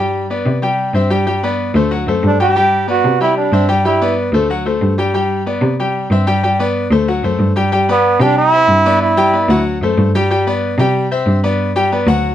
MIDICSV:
0, 0, Header, 1, 4, 480
1, 0, Start_track
1, 0, Key_signature, 1, "major"
1, 0, Tempo, 322407
1, 1892, Time_signature, 4, 2, 24, 8
1, 18384, End_track
2, 0, Start_track
2, 0, Title_t, "Grand piano"
2, 0, Program_c, 0, 0
2, 0, Note_on_c, 0, 55, 83
2, 0, Note_on_c, 0, 67, 88
2, 0, Note_on_c, 0, 79, 87
2, 364, Note_off_c, 0, 55, 0
2, 365, Note_off_c, 0, 67, 0
2, 371, Note_off_c, 0, 79, 0
2, 450, Note_on_c, 0, 59, 71
2, 456, Note_on_c, 0, 74, 78
2, 459, Note_on_c, 0, 71, 75
2, 844, Note_off_c, 0, 59, 0
2, 848, Note_off_c, 0, 74, 0
2, 850, Note_off_c, 0, 71, 0
2, 925, Note_on_c, 0, 55, 84
2, 933, Note_on_c, 0, 67, 84
2, 939, Note_on_c, 0, 79, 89
2, 1322, Note_off_c, 0, 55, 0
2, 1326, Note_off_c, 0, 67, 0
2, 1329, Note_off_c, 0, 79, 0
2, 1404, Note_on_c, 0, 60, 75
2, 1409, Note_on_c, 0, 72, 76
2, 1420, Note_on_c, 0, 76, 75
2, 1604, Note_off_c, 0, 60, 0
2, 1607, Note_off_c, 0, 72, 0
2, 1613, Note_off_c, 0, 76, 0
2, 1643, Note_on_c, 0, 55, 90
2, 1644, Note_on_c, 0, 67, 90
2, 1652, Note_on_c, 0, 79, 92
2, 1843, Note_off_c, 0, 55, 0
2, 1844, Note_off_c, 0, 67, 0
2, 1849, Note_off_c, 0, 79, 0
2, 1885, Note_on_c, 0, 55, 81
2, 1889, Note_on_c, 0, 67, 91
2, 1895, Note_on_c, 0, 79, 90
2, 2084, Note_off_c, 0, 55, 0
2, 2087, Note_off_c, 0, 67, 0
2, 2090, Note_off_c, 0, 79, 0
2, 2133, Note_on_c, 0, 59, 84
2, 2139, Note_on_c, 0, 71, 84
2, 2144, Note_on_c, 0, 74, 83
2, 2526, Note_off_c, 0, 59, 0
2, 2529, Note_off_c, 0, 71, 0
2, 2533, Note_off_c, 0, 74, 0
2, 2612, Note_on_c, 0, 57, 77
2, 2616, Note_on_c, 0, 69, 75
2, 2622, Note_on_c, 0, 72, 78
2, 2808, Note_off_c, 0, 57, 0
2, 2811, Note_off_c, 0, 69, 0
2, 2814, Note_off_c, 0, 72, 0
2, 2845, Note_on_c, 0, 66, 81
2, 2846, Note_on_c, 0, 54, 80
2, 2854, Note_on_c, 0, 78, 80
2, 3044, Note_off_c, 0, 66, 0
2, 3045, Note_off_c, 0, 54, 0
2, 3049, Note_off_c, 0, 78, 0
2, 3095, Note_on_c, 0, 57, 69
2, 3100, Note_on_c, 0, 69, 76
2, 3101, Note_on_c, 0, 72, 75
2, 3487, Note_off_c, 0, 57, 0
2, 3490, Note_off_c, 0, 69, 0
2, 3490, Note_off_c, 0, 72, 0
2, 3574, Note_on_c, 0, 55, 87
2, 3574, Note_on_c, 0, 67, 91
2, 3581, Note_on_c, 0, 79, 88
2, 3769, Note_off_c, 0, 55, 0
2, 3769, Note_off_c, 0, 67, 0
2, 3774, Note_off_c, 0, 79, 0
2, 3810, Note_on_c, 0, 55, 87
2, 3817, Note_on_c, 0, 79, 88
2, 3820, Note_on_c, 0, 67, 89
2, 4204, Note_off_c, 0, 55, 0
2, 4208, Note_off_c, 0, 79, 0
2, 4210, Note_off_c, 0, 67, 0
2, 4283, Note_on_c, 0, 59, 70
2, 4290, Note_on_c, 0, 71, 77
2, 4295, Note_on_c, 0, 74, 74
2, 4680, Note_off_c, 0, 59, 0
2, 4684, Note_off_c, 0, 71, 0
2, 4687, Note_off_c, 0, 74, 0
2, 4770, Note_on_c, 0, 55, 85
2, 4776, Note_on_c, 0, 67, 86
2, 4784, Note_on_c, 0, 79, 84
2, 5164, Note_off_c, 0, 55, 0
2, 5167, Note_off_c, 0, 67, 0
2, 5172, Note_off_c, 0, 79, 0
2, 5257, Note_on_c, 0, 60, 76
2, 5258, Note_on_c, 0, 72, 80
2, 5260, Note_on_c, 0, 76, 72
2, 5451, Note_off_c, 0, 60, 0
2, 5452, Note_off_c, 0, 72, 0
2, 5453, Note_off_c, 0, 76, 0
2, 5488, Note_on_c, 0, 55, 97
2, 5491, Note_on_c, 0, 67, 91
2, 5495, Note_on_c, 0, 79, 88
2, 5686, Note_off_c, 0, 55, 0
2, 5688, Note_off_c, 0, 67, 0
2, 5690, Note_off_c, 0, 79, 0
2, 5730, Note_on_c, 0, 55, 86
2, 5737, Note_on_c, 0, 67, 92
2, 5745, Note_on_c, 0, 79, 88
2, 5928, Note_off_c, 0, 55, 0
2, 5931, Note_off_c, 0, 67, 0
2, 5936, Note_off_c, 0, 79, 0
2, 5977, Note_on_c, 0, 59, 84
2, 5978, Note_on_c, 0, 71, 85
2, 5984, Note_on_c, 0, 74, 83
2, 6369, Note_off_c, 0, 59, 0
2, 6369, Note_off_c, 0, 71, 0
2, 6373, Note_off_c, 0, 74, 0
2, 6460, Note_on_c, 0, 57, 83
2, 6462, Note_on_c, 0, 69, 85
2, 6465, Note_on_c, 0, 72, 78
2, 6653, Note_off_c, 0, 57, 0
2, 6655, Note_off_c, 0, 69, 0
2, 6657, Note_off_c, 0, 72, 0
2, 6698, Note_on_c, 0, 66, 83
2, 6699, Note_on_c, 0, 54, 85
2, 6712, Note_on_c, 0, 78, 89
2, 6893, Note_off_c, 0, 54, 0
2, 6893, Note_off_c, 0, 66, 0
2, 6901, Note_off_c, 0, 78, 0
2, 6933, Note_on_c, 0, 57, 73
2, 6939, Note_on_c, 0, 69, 71
2, 6943, Note_on_c, 0, 72, 74
2, 7327, Note_off_c, 0, 57, 0
2, 7330, Note_off_c, 0, 69, 0
2, 7332, Note_off_c, 0, 72, 0
2, 7414, Note_on_c, 0, 55, 93
2, 7424, Note_on_c, 0, 67, 89
2, 7432, Note_on_c, 0, 79, 93
2, 7611, Note_off_c, 0, 55, 0
2, 7616, Note_off_c, 0, 67, 0
2, 7621, Note_off_c, 0, 79, 0
2, 7653, Note_on_c, 0, 55, 90
2, 7662, Note_on_c, 0, 67, 89
2, 7667, Note_on_c, 0, 79, 88
2, 8047, Note_off_c, 0, 55, 0
2, 8052, Note_off_c, 0, 67, 0
2, 8055, Note_off_c, 0, 79, 0
2, 8134, Note_on_c, 0, 59, 74
2, 8139, Note_on_c, 0, 71, 72
2, 8143, Note_on_c, 0, 74, 73
2, 8528, Note_off_c, 0, 59, 0
2, 8531, Note_off_c, 0, 71, 0
2, 8533, Note_off_c, 0, 74, 0
2, 8629, Note_on_c, 0, 55, 82
2, 8633, Note_on_c, 0, 67, 86
2, 8635, Note_on_c, 0, 79, 86
2, 9016, Note_off_c, 0, 55, 0
2, 9019, Note_off_c, 0, 67, 0
2, 9021, Note_off_c, 0, 79, 0
2, 9104, Note_on_c, 0, 60, 75
2, 9105, Note_on_c, 0, 72, 73
2, 9112, Note_on_c, 0, 76, 75
2, 9297, Note_off_c, 0, 60, 0
2, 9297, Note_off_c, 0, 72, 0
2, 9302, Note_off_c, 0, 76, 0
2, 9333, Note_on_c, 0, 55, 96
2, 9337, Note_on_c, 0, 67, 97
2, 9342, Note_on_c, 0, 79, 99
2, 9531, Note_off_c, 0, 55, 0
2, 9533, Note_off_c, 0, 67, 0
2, 9536, Note_off_c, 0, 79, 0
2, 9577, Note_on_c, 0, 55, 87
2, 9585, Note_on_c, 0, 67, 93
2, 9586, Note_on_c, 0, 79, 92
2, 9773, Note_off_c, 0, 55, 0
2, 9778, Note_off_c, 0, 67, 0
2, 9779, Note_off_c, 0, 79, 0
2, 9816, Note_on_c, 0, 59, 84
2, 9827, Note_on_c, 0, 71, 86
2, 9828, Note_on_c, 0, 74, 86
2, 10210, Note_off_c, 0, 59, 0
2, 10216, Note_off_c, 0, 71, 0
2, 10216, Note_off_c, 0, 74, 0
2, 10296, Note_on_c, 0, 57, 80
2, 10301, Note_on_c, 0, 69, 78
2, 10304, Note_on_c, 0, 72, 84
2, 10493, Note_off_c, 0, 57, 0
2, 10496, Note_off_c, 0, 69, 0
2, 10497, Note_off_c, 0, 72, 0
2, 10543, Note_on_c, 0, 66, 84
2, 10545, Note_on_c, 0, 54, 86
2, 10548, Note_on_c, 0, 78, 84
2, 10737, Note_off_c, 0, 66, 0
2, 10738, Note_off_c, 0, 54, 0
2, 10740, Note_off_c, 0, 78, 0
2, 10779, Note_on_c, 0, 57, 74
2, 10780, Note_on_c, 0, 69, 76
2, 10784, Note_on_c, 0, 72, 79
2, 11172, Note_off_c, 0, 57, 0
2, 11172, Note_off_c, 0, 69, 0
2, 11175, Note_off_c, 0, 72, 0
2, 11253, Note_on_c, 0, 55, 91
2, 11261, Note_on_c, 0, 67, 94
2, 11267, Note_on_c, 0, 79, 93
2, 11451, Note_off_c, 0, 55, 0
2, 11456, Note_off_c, 0, 67, 0
2, 11460, Note_off_c, 0, 79, 0
2, 11496, Note_on_c, 0, 67, 93
2, 11497, Note_on_c, 0, 55, 92
2, 11503, Note_on_c, 0, 79, 96
2, 11693, Note_off_c, 0, 67, 0
2, 11694, Note_off_c, 0, 55, 0
2, 11697, Note_off_c, 0, 79, 0
2, 11742, Note_on_c, 0, 71, 85
2, 11745, Note_on_c, 0, 59, 87
2, 11752, Note_on_c, 0, 74, 91
2, 12133, Note_off_c, 0, 71, 0
2, 12135, Note_off_c, 0, 59, 0
2, 12139, Note_off_c, 0, 74, 0
2, 12216, Note_on_c, 0, 55, 89
2, 12223, Note_on_c, 0, 67, 95
2, 12231, Note_on_c, 0, 79, 90
2, 12610, Note_off_c, 0, 55, 0
2, 12614, Note_off_c, 0, 67, 0
2, 12619, Note_off_c, 0, 79, 0
2, 12706, Note_on_c, 0, 60, 76
2, 12708, Note_on_c, 0, 76, 72
2, 12713, Note_on_c, 0, 72, 76
2, 13096, Note_off_c, 0, 60, 0
2, 13097, Note_off_c, 0, 76, 0
2, 13100, Note_off_c, 0, 72, 0
2, 13187, Note_on_c, 0, 59, 81
2, 13189, Note_on_c, 0, 71, 87
2, 13194, Note_on_c, 0, 74, 90
2, 13576, Note_off_c, 0, 59, 0
2, 13577, Note_off_c, 0, 71, 0
2, 13580, Note_off_c, 0, 74, 0
2, 13657, Note_on_c, 0, 55, 104
2, 13658, Note_on_c, 0, 67, 95
2, 13666, Note_on_c, 0, 79, 102
2, 13854, Note_off_c, 0, 55, 0
2, 13854, Note_off_c, 0, 67, 0
2, 13859, Note_off_c, 0, 79, 0
2, 13892, Note_on_c, 0, 59, 74
2, 13900, Note_on_c, 0, 71, 80
2, 13902, Note_on_c, 0, 74, 79
2, 14090, Note_off_c, 0, 59, 0
2, 14096, Note_off_c, 0, 71, 0
2, 14096, Note_off_c, 0, 74, 0
2, 14140, Note_on_c, 0, 54, 97
2, 14142, Note_on_c, 0, 66, 96
2, 14147, Note_on_c, 0, 78, 96
2, 14532, Note_off_c, 0, 54, 0
2, 14533, Note_off_c, 0, 66, 0
2, 14536, Note_off_c, 0, 78, 0
2, 14630, Note_on_c, 0, 57, 82
2, 14639, Note_on_c, 0, 69, 83
2, 14640, Note_on_c, 0, 72, 73
2, 15018, Note_off_c, 0, 57, 0
2, 15023, Note_off_c, 0, 69, 0
2, 15024, Note_off_c, 0, 72, 0
2, 15112, Note_on_c, 0, 55, 101
2, 15115, Note_on_c, 0, 67, 104
2, 15121, Note_on_c, 0, 79, 97
2, 15302, Note_off_c, 0, 55, 0
2, 15304, Note_off_c, 0, 67, 0
2, 15308, Note_off_c, 0, 79, 0
2, 15342, Note_on_c, 0, 55, 94
2, 15352, Note_on_c, 0, 67, 90
2, 15355, Note_on_c, 0, 79, 92
2, 15536, Note_off_c, 0, 55, 0
2, 15542, Note_off_c, 0, 67, 0
2, 15544, Note_off_c, 0, 79, 0
2, 15586, Note_on_c, 0, 59, 84
2, 15591, Note_on_c, 0, 71, 83
2, 15595, Note_on_c, 0, 74, 89
2, 15975, Note_off_c, 0, 59, 0
2, 15978, Note_off_c, 0, 71, 0
2, 15981, Note_off_c, 0, 74, 0
2, 16067, Note_on_c, 0, 55, 97
2, 16072, Note_on_c, 0, 67, 92
2, 16082, Note_on_c, 0, 79, 98
2, 16456, Note_off_c, 0, 55, 0
2, 16458, Note_off_c, 0, 67, 0
2, 16464, Note_off_c, 0, 79, 0
2, 16545, Note_on_c, 0, 60, 75
2, 16551, Note_on_c, 0, 72, 82
2, 16553, Note_on_c, 0, 76, 82
2, 16935, Note_off_c, 0, 60, 0
2, 16938, Note_off_c, 0, 72, 0
2, 16939, Note_off_c, 0, 76, 0
2, 17025, Note_on_c, 0, 71, 84
2, 17026, Note_on_c, 0, 59, 82
2, 17031, Note_on_c, 0, 74, 85
2, 17415, Note_off_c, 0, 59, 0
2, 17415, Note_off_c, 0, 71, 0
2, 17418, Note_off_c, 0, 74, 0
2, 17504, Note_on_c, 0, 55, 99
2, 17508, Note_on_c, 0, 67, 97
2, 17516, Note_on_c, 0, 79, 99
2, 17697, Note_off_c, 0, 55, 0
2, 17700, Note_off_c, 0, 67, 0
2, 17704, Note_off_c, 0, 79, 0
2, 17749, Note_on_c, 0, 59, 78
2, 17753, Note_on_c, 0, 71, 79
2, 17753, Note_on_c, 0, 74, 75
2, 17940, Note_off_c, 0, 59, 0
2, 17942, Note_off_c, 0, 71, 0
2, 17942, Note_off_c, 0, 74, 0
2, 17980, Note_on_c, 0, 54, 89
2, 17983, Note_on_c, 0, 66, 99
2, 17989, Note_on_c, 0, 78, 99
2, 18372, Note_off_c, 0, 54, 0
2, 18373, Note_off_c, 0, 66, 0
2, 18377, Note_off_c, 0, 78, 0
2, 18384, End_track
3, 0, Start_track
3, 0, Title_t, "Trombone"
3, 0, Program_c, 1, 57
3, 3382, Note_on_c, 1, 62, 92
3, 3582, Note_off_c, 1, 62, 0
3, 3600, Note_on_c, 1, 67, 108
3, 4256, Note_off_c, 1, 67, 0
3, 4320, Note_on_c, 1, 66, 94
3, 4753, Note_off_c, 1, 66, 0
3, 4787, Note_on_c, 1, 64, 103
3, 5003, Note_off_c, 1, 64, 0
3, 5025, Note_on_c, 1, 62, 86
3, 5465, Note_off_c, 1, 62, 0
3, 5742, Note_on_c, 1, 64, 87
3, 6184, Note_off_c, 1, 64, 0
3, 11784, Note_on_c, 1, 59, 97
3, 12253, Note_on_c, 1, 62, 104
3, 12275, Note_off_c, 1, 59, 0
3, 12466, Note_off_c, 1, 62, 0
3, 12475, Note_on_c, 1, 64, 123
3, 13366, Note_off_c, 1, 64, 0
3, 13432, Note_on_c, 1, 64, 102
3, 14324, Note_off_c, 1, 64, 0
3, 18384, End_track
4, 0, Start_track
4, 0, Title_t, "Cello"
4, 0, Program_c, 2, 42
4, 0, Note_on_c, 2, 43, 94
4, 608, Note_off_c, 2, 43, 0
4, 684, Note_on_c, 2, 48, 101
4, 1357, Note_off_c, 2, 48, 0
4, 1395, Note_on_c, 2, 43, 91
4, 2519, Note_off_c, 2, 43, 0
4, 2595, Note_on_c, 2, 38, 105
4, 3049, Note_off_c, 2, 38, 0
4, 3074, Note_on_c, 2, 42, 74
4, 3305, Note_off_c, 2, 42, 0
4, 3320, Note_on_c, 2, 43, 97
4, 4442, Note_off_c, 2, 43, 0
4, 4528, Note_on_c, 2, 48, 97
4, 5199, Note_off_c, 2, 48, 0
4, 5237, Note_on_c, 2, 43, 96
4, 6361, Note_off_c, 2, 43, 0
4, 6435, Note_on_c, 2, 38, 92
4, 7113, Note_off_c, 2, 38, 0
4, 7169, Note_on_c, 2, 43, 96
4, 8288, Note_off_c, 2, 43, 0
4, 8360, Note_on_c, 2, 48, 100
4, 9037, Note_off_c, 2, 48, 0
4, 9081, Note_on_c, 2, 43, 97
4, 10205, Note_off_c, 2, 43, 0
4, 10283, Note_on_c, 2, 38, 97
4, 10735, Note_off_c, 2, 38, 0
4, 10766, Note_on_c, 2, 42, 68
4, 10994, Note_off_c, 2, 42, 0
4, 11003, Note_on_c, 2, 43, 97
4, 12127, Note_off_c, 2, 43, 0
4, 12207, Note_on_c, 2, 48, 102
4, 12881, Note_off_c, 2, 48, 0
4, 12920, Note_on_c, 2, 43, 95
4, 14045, Note_off_c, 2, 43, 0
4, 14122, Note_on_c, 2, 38, 99
4, 14575, Note_off_c, 2, 38, 0
4, 14606, Note_on_c, 2, 42, 76
4, 14834, Note_off_c, 2, 42, 0
4, 14848, Note_on_c, 2, 43, 100
4, 15968, Note_off_c, 2, 43, 0
4, 16045, Note_on_c, 2, 48, 109
4, 16719, Note_off_c, 2, 48, 0
4, 16764, Note_on_c, 2, 43, 98
4, 17886, Note_off_c, 2, 43, 0
4, 17964, Note_on_c, 2, 38, 102
4, 18384, Note_off_c, 2, 38, 0
4, 18384, End_track
0, 0, End_of_file